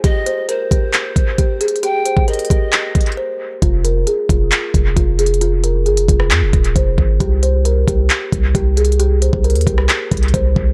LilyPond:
<<
  \new Staff \with { instrumentName = "Pan flute" } { \time 4/4 \key c \minor \tempo 4 = 134 ees''4 c''2. | g''4 ees''2 r4 | r1 | r1 |
r1 | r1 | }
  \new Staff \with { instrumentName = "Kalimba" } { \time 4/4 \key c \minor g'8 c''8 bes'8 g'4. g'8 aes'8 | g'8 c''8 bes'8 g'4. c''8 r8 | f'8 bes'8 aes'8 f'4. f'8 aes'8 | f'8 bes'8 aes'8 f'4. c''8 r8 |
g'8 c''8 bes'8 g'4. g'8 aes'8 | g'8 c''8 bes'8 g'4. c''8 r8 | }
  \new Staff \with { instrumentName = "808-style bass" } { \clef bass \time 4/4 \key c \minor r1 | r1 | f,,4 r8 f,,8 r8 f,,8 f,,4~ | f,,4 g,,16 f,,16 f,,8 f,16 f,,16 ees,,8 f,,8 aes,,8 |
c,4. c,8 r8 c,8 c,4~ | c,8. c,8 ees,16 c,8 r8 c,8 c,8 c,8 | }
  \new DrumStaff \with { instrumentName = "Drums" } \drummode { \time 4/4 <hh bd>8 hh8 hh8 <hh bd>8 <hc hh>8 <hh bd>8 \tuplet 3/2 { <hh bd>16 r16 r16 hh16 hh16 hh16 } | hh8 hh16 bd16 hh32 hh32 hh32 hh32 <hh bd>8 <hc hh>8 <hh bd>32 hh32 hh32 hh32 r4 | <hh bd>8 hh8 hh8 <hh bd>8 <hc hh>8 <hh bd>8 \tuplet 3/2 { <hh bd>16 r16 r16 hh16 hh16 hh16 } | hh8 hh8 hh16 hh16 <hh bd>16 ss16 <hc hh>8 <hh bd>16 hh16 <hh bd>8 bd8 |
<hh bd>8 hh8 hh8 <hh bd>8 <hc hh>8 <hh bd>8 \tuplet 3/2 { <hh bd>16 r16 r16 hh16 hh16 hh16 } | hh8 hh16 bd16 hh32 hh32 hh32 hh32 <hh bd>16 ss16 <hc hh>8 <hh bd>32 hh32 hh32 hh32 <hh bd>8 bd8 | }
>>